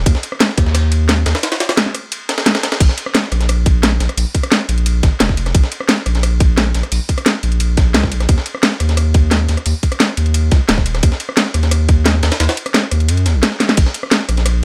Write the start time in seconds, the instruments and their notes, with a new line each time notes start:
0.06 sub bass D#2, kick, closed hi-hat, ride
0.15 snare
0.23 closed hi-hat, ride
0.32 cross-stick
0.40 snare, closed hi-hat, ride
0.49 snare
0.58 sub bass D#2, kick, cross-stick, closed hi-hat, ride
0.66 snare
0.75 cross-stick, closed hi-hat, ride
0.92 closed hi-hat, ride
1.09 snare, closed hi-hat, ride
1.26 sub bass D#2, snare, closed hi-hat, ride
1.35 cross-stick, snare, ride
1.43 snare, closed hi-hat, ride
1.52 snare, ride
1.60 snare, closed hi-hat, ride
1.69 cross-stick, snare, ride
1.77 snare, closed hi-hat, ride
1.86 snare
1.95 cross-stick, closed hi-hat, ride
2.12 closed hi-hat, ride
2.29 snare, closed hi-hat, ride
2.38 snare, ride
2.46 snare, closed hi-hat, ride
2.55 snare, ride
2.63 snare, closed hi-hat, ride
2.72 cross-stick, snare, ride
2.80 sub bass A#1, kick, closed hi-hat, crash, ride
2.89 snare
2.98 closed hi-hat, ride
3.06 cross-stick
3.15 snare, closed hi-hat, ride
3.24 snare
3.32 sub bass A#1, cross-stick, closed hi-hat, ride
3.40 snare, closed hi-hat
3.49 cross-stick, closed hi-hat, ride
3.66 kick, closed hi-hat, ride
3.83 snare, closed hi-hat, ride
4.00 sub bass A#1, snare, closed hi-hat, ride
4.09 cross-stick, closed hi-hat
4.17 sub bass A#1, closed hi-hat, open hi-hat
4.35 kick, closed hi-hat, ride
4.43 cross-stick, closed hi-hat, ride
4.52 snare, closed hi-hat, ride
4.69 sub bass A#1, closed hi-hat, ride
4.78 closed hi-hat
4.86 closed hi-hat, ride
5.03 sub bass G#1, kick, snare, closed hi-hat, ride
5.20 sub bass F1, snare, closed hi-hat, ride
5.29 kick, snare
5.37 closed hi-hat, ride
5.46 cross-stick, snare, closed hi-hat
5.55 sub bass A#1, kick, closed hi-hat, ride
5.63 snare
5.72 closed hi-hat, ride
5.80 cross-stick
5.89 snare, closed hi-hat, ride
5.98 snare
6.06 sub bass A#1, cross-stick, closed hi-hat, ride
6.15 snare, closed hi-hat
6.23 cross-stick, closed hi-hat, ride
6.40 kick, closed hi-hat, ride
6.58 snare, closed hi-hat, ride
6.74 sub bass A#1, snare, closed hi-hat, ride
6.83 cross-stick, closed hi-hat
6.92 sub bass A#1, closed hi-hat, open hi-hat
7.09 kick, closed hi-hat, ride
7.18 cross-stick, closed hi-hat, ride
7.26 snare, closed hi-hat, ride
7.43 sub bass A#1, closed hi-hat, ride
7.52 closed hi-hat
7.60 sub bass A#1, closed hi-hat, ride
7.77 kick, snare, closed hi-hat, ride
7.94 sub bass C#2, snare, closed hi-hat, ride
8.03 kick, snare
8.12 sub bass A#1, closed hi-hat, ride
8.20 cross-stick, snare, closed hi-hat
8.29 sub bass D#2, kick, closed hi-hat, ride
8.38 snare
8.46 closed hi-hat, ride
8.55 cross-stick
8.63 snare, closed hi-hat, ride
8.72 snare
8.80 sub bass D#2, cross-stick, closed hi-hat, ride
8.89 snare, closed hi-hat
8.97 cross-stick, closed hi-hat, ride
9.14 kick, closed hi-hat, ride
9.31 snare, closed hi-hat, ride
9.49 sub bass D#2, snare, closed hi-hat, ride
9.57 cross-stick, closed hi-hat
9.66 sub bass D#2, closed hi-hat, open hi-hat
9.83 kick, closed hi-hat, ride
9.92 cross-stick, closed hi-hat, ride
10.00 snare, closed hi-hat, ride
10.17 sub bass D#2, closed hi-hat, ride
10.26 closed hi-hat
10.34 closed hi-hat, ride
10.51 sub bass C#2, kick, snare, closed hi-hat, ride
10.69 sub bass D#1, snare, closed hi-hat, ride
10.78 kick, snare
10.86 closed hi-hat, ride
10.95 cross-stick, snare, closed hi-hat
11.03 sub bass D#2, kick, closed hi-hat, ride
11.12 snare
11.20 closed hi-hat, ride
11.29 cross-stick
11.37 snare, closed hi-hat, ride
11.46 snare
11.54 sub bass D#2, cross-stick, closed hi-hat, ride
11.63 snare, closed hi-hat
11.71 cross-stick, closed hi-hat, ride
11.89 kick, closed hi-hat, ride
12.06 snare, closed hi-hat, ride
12.23 sub bass D#2, snare, closed hi-hat, ride
12.32 cross-stick, snare, closed hi-hat, ride
12.40 sub bass D#2, snare, closed hi-hat, ride
12.49 snare, ride
12.57 closed hi-hat, ride
12.66 cross-stick, closed hi-hat, ride
12.74 snare, closed hi-hat, ride
12.91 sub bass D#2, cross-stick, closed hi-hat, ride
13.00 closed hi-hat
13.09 sub bass F#2, closed hi-hat, ride
13.17 closed hi-hat
13.26 sub bass D#2, snare, closed hi-hat, ride
13.35 sub bass A#1
13.43 snare, closed hi-hat, ride
13.52 snare
13.60 snare, closed hi-hat, ride
13.69 snare, closed hi-hat
13.77 sub bass A#1, kick, closed hi-hat, crash, ride
13.86 snare
13.94 closed hi-hat, ride
14.03 cross-stick
14.11 snare, closed hi-hat, ride
14.21 snare
14.29 sub bass A#1, cross-stick, closed hi-hat, ride
14.37 snare, closed hi-hat
14.46 cross-stick, closed hi-hat, ride